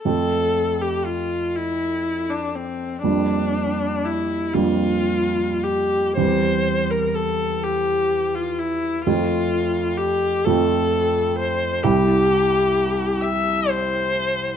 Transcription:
X:1
M:6/8
L:1/16
Q:3/8=41
K:F
V:1 name="Viola"
A3 G F2 E3 D C2 | D4 E2 F4 G2 | c3 B A2 G3 F E2 | F4 G2 A4 c2 |
G6 e2 c4 |]
V:2 name="Grand piano"
[F,,A,C]12 | [F,,G,B,D]6 [F,,G,B,D]6 | [E,,G,CG]12 | [F,,A,CF]6 [F,,A,CF]6 |
[C,,G,CE]12 |]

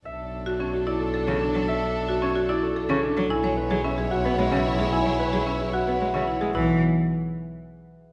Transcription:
X:1
M:3/4
L:1/16
Q:1/4=111
K:Bdor
V:1 name="Harp"
e4 c2 d A2 c3 | e4 c2 d A2 c3 | g2 B2 e2 f B2 e2 G | g2 B2 e2 f B2 e2 G |
B2 z8 z2 |]
V:2 name="Violin section"
[DA]12- | [DA]8- [DA]3 z | [Ec]12- | [Ec]8- [Ec]3 z |
z12 |]
V:3 name="Marimba"
z3 F C F E z A C D z | z3 F C F E z A C D z | E c z G C G F z c C E G | E c z G C G F z c C E G |
E2 z8 z2 |]
V:4 name="Cello" clef=bass
z8 z C, z F, | z8 z C, z F, | z F, z F, z3 B, G, C, z G, | z F, z F, z3 B, G, C, z G, |
E,2 z8 z2 |]
V:5 name="Double bass" clef=bass
B,,,12- | B,,,12 | B,,,12- | B,,,12 |
B,,,2 z8 z2 |]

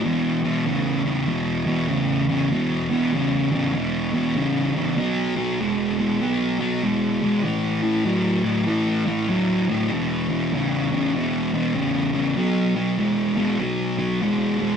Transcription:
X:1
M:4/4
L:1/8
Q:"Swing" 1/4=97
K:E
V:1 name="Distorted electric guitar" clef=bass
[E,,B,,] [E,,B,,] [E,,C,] [E,,C,] [E,,B,,] [E,,B,,] [E,,C,] [E,,C,] | [E,,B,,] [E,,B,,] [E,,C,] [E,,C,] [E,,B,,] [E,,B,,] [E,,C,] [E,,C,] | [B,,F,] [B,,F,] [B,,G,] [B,,G,] [B,,F,] [B,,F,] [B,,G,] [B,,G,] | [A,,E,] [A,,E,] [A,,F,] [A,,F,] [A,,E,] [A,,E,] [A,,F,] [A,,F,] |
[E,,B,,] [E,,B,,] [E,,C,] [E,,C,] [E,,B,,] [E,,B,,] [E,,C,] [E,,C,] | [B,,F,] [B,,F,] [B,,G,] [B,,G,] [B,,F,] [B,,F,] [B,,G,] [B,,G,] |]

